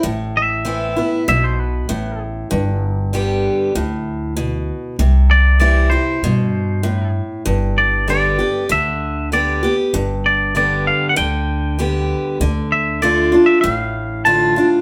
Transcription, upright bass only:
\new Staff \with { instrumentName = "Upright bass" } { \clef bass \time 4/4 \key g \mixolydian \tempo 4 = 97 a,,2 b,,4 a,,4 | g,,2 d,2 | c,2 g,2 | g,,2 d,2 |
g,,2 d,2 | d,2 a,,2 | }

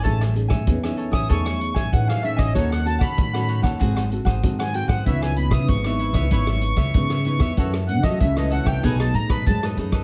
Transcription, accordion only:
\new Staff \with { instrumentName = "Accordion" } { \time 4/4 \key cis \minor \tempo 4 = 96 a''8 r4 r16 dis'''16 cis'''8. gis''16 fis''16 f''16 e''16 dis''16 | cis''16 fis''16 a''16 b''4 r4. gis''16 g''16 fis''16 | e''16 gis''16 b''16 dis'''16 cis'''2. | r8 fis''16 dis''16 e''16 dis''16 fis''16 g''16 gis''16 a''16 ais''16 b''16 a''8 r8 | }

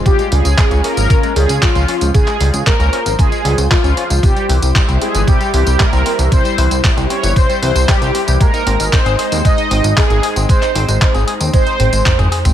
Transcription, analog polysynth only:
\new Staff \with { instrumentName = "Analog polysynth" } { \time 4/4 \key c \phrygian \tempo 4 = 115 g'8 aes'4 bes'4 aes'8 f'4 | aes'4 bes'4 aes'4 f'4 | g'4 r8 aes'8 g'8 g'8 bes'4 | c''4 r8 des''8 c''8 c''8 g'4 |
bes'4 c''4 ees''4 aes'4 | c''4. r8 c''4. r8 | }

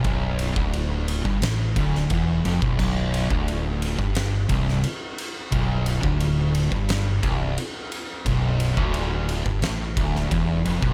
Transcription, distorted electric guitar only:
\new Staff \with { instrumentName = "Distorted electric guitar" } { \clef bass \time 4/4 \key b \minor \tempo 4 = 88 b,,8. d,4 g,16 a,8 d,8 e,8 eis,16 b,,16 | b,,8. d,4 g,8. c,8 r4 | b,,8. d,4 g,8. c,8 r4 | b,,8. d,4 g,16 a,8 d,8 e,8 eis,16 b,,16 | }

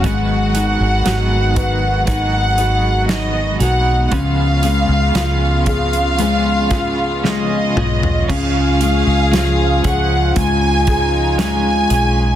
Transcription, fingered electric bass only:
\new Staff \with { instrumentName = "Fingered electric bass" } { \clef bass \time 4/4 \key cis \mixolydian \tempo 4 = 58 gis,,8. gis,,16 gis,,4 gis,,4. b,,8 | cis,8. cis,16 cis,2~ cis,8 b,,8 | cis,8. cis,8. cis,8 cis,4. b,,8 | }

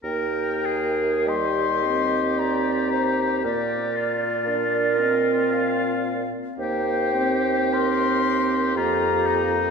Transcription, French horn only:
\new Staff \with { instrumentName = "French horn" } { \time 3/4 \key ees \major \tempo 4 = 56 bes4 g8 c'4. | bes4 d'8 c'4~ c'16 r16 | bes8 c'4. bes4 | }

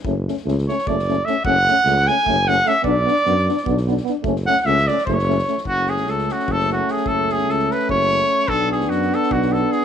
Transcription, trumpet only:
\new Staff \with { instrumentName = "Trumpet" } { \time 7/8 \key fis \minor \tempo 4 = 149 r4. cis''8 d''4 e''8 | fis''4. gis''4 fis''8 e''8 | d''2~ d''8 r4 | r8 fis''16. fis''32 e''8 d''8 cis''4. |
fis'8 gis'8 a'8 fis'8 a'8 fis'8 gis'8 | a'8 gis'8 a'8 b'8 cis''4. | a'8 gis'8 fis'8 a'8 fis'8 a'8 gis'8 | }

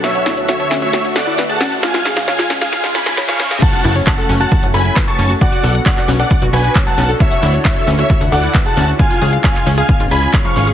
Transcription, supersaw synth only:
\new Staff \with { instrumentName = "Supersaw synth" } { \time 4/4 \key fis \minor \tempo 4 = 134 <cis'' e''>8. r16 <cis'' e''>8 r16 <cis'' e''>8 r16 <d'' fis''>8 r16 <fis'' a''>8 r16 | <eis'' gis''>8. r16 <eis'' gis''>8 r16 <eis'' gis''>8 r16 <gis'' b''>8 r16 <eis'' cis'''>8 r16 | <fis'' a''>8. r16 <fis'' a''>8 r16 <fis'' a''>8 r16 <gis'' b''>8 r16 <a'' cis'''>8 r16 | <d'' fis''>8. r16 <d'' fis''>8 r16 <d'' fis''>8 r16 <b' gis''>8 r16 <fis'' a''>8 r16 |
<cis'' e''>8. r16 <cis'' e''>8 r16 <cis'' e''>8 r16 <d'' fis''>8 r16 <fis'' a''>8 r16 | <eis'' gis''>8. r16 <eis'' gis''>8 r16 <eis'' gis''>8 r16 <gis'' b''>8 r16 <eis'' cis'''>8 r16 | }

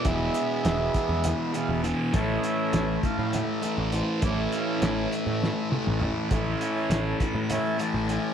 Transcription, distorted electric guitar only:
\new Staff \with { instrumentName = "Distorted electric guitar" } { \clef bass \time 7/8 \key a \lydian \tempo 4 = 101 <e, b, e>2~ <e, b, e>8 <e, b, e>8 <e, b, e>8 | <a, e a>2~ <a, e a>8 <a, e a>8 <a, e a>8 | <a, e a>2~ <a, e a>8 <a, e a>8 <a, e a>8 | <a, e a>2~ <a, e a>8 <a, e a>8 <a, e a>8 | }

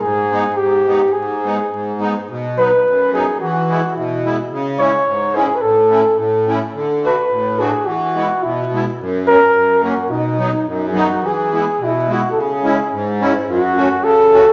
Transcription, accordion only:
\new Staff \with { instrumentName = "Accordion" } { \time 2/4 \key gis \minor \tempo 4 = 107 << { r8 <gis b dis'>8 r8 <gis b dis'>8 | r8 <gis b dis'>8 r8 <gis b dis'>8 | \key b \major r8 <fis b dis'>8 r8 <fis b dis'>8 | r8 <gis b e'>8 r8 <gis b e'>8 |
r8 <gis cis' e'>8 r8 <gis cis' e'>8 | r8 <a cis' e'>8 r8 <a cis' e'>8 | r8 <a d' fis'>8 r8 <a d' fis'>8 | r8 <gis b e'>8 r8 <gis b e'>8 |
r8 <fis b cis'>8 r8 <fis ais cis'>8 | r8 <fis b dis'>8 r8 <fis b dis'>8 | \key e \major r8 <gis b e'>8 r8 <gis b e'>8 | r8 <gis cis' e'>8 r8 <gis cis' e'>8 |
r8 <a cis' fis'>8 r8 <a cis' fis'>8 | } \\ { gis,4 gis,4 | gis,4 gis,4 | b,4 fis,4 | e4 b,4 |
cis4 gis,4 | a,4 a,4 | d4 a,4 | e4 b,4 |
fis,4 fis,4 | b,4 fis,4 | e4 b,4 | cis4 gis,4 |
fis,4 cis4 | } >> }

